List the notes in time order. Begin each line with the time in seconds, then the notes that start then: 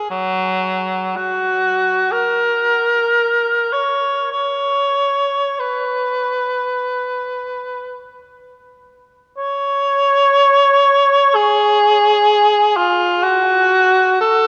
0.10 F#3
1.16 F#4
2.11 A#4
3.73 C#5
4.32 C#5
5.60 B4
9.37 C#5
11.35 G#4
12.76 F4
13.23 F#4
14.21 A4